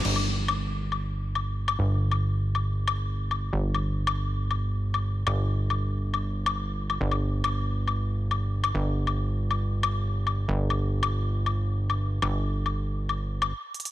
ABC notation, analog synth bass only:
X:1
M:4/4
L:1/8
Q:1/4=138
K:none
V:1 name="Analog synth bass" clef=bass
G,,,8 | G,,,8 | G,,,8 | G,,,8 |
G,,,8 | G,,,8 | G,,,8 | G,,,6 z2 |]